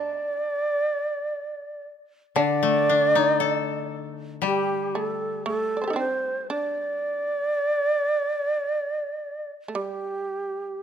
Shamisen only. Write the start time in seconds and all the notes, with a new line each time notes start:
Already playing: D4
2.36 D4
4.43 G3
4.95 A3
5.46 A3
5.77 D5
5.82 A4 C5
5.88 D#4 G4
5.93 C4 D4
6.50 D4
9.68 A3
9.75 G3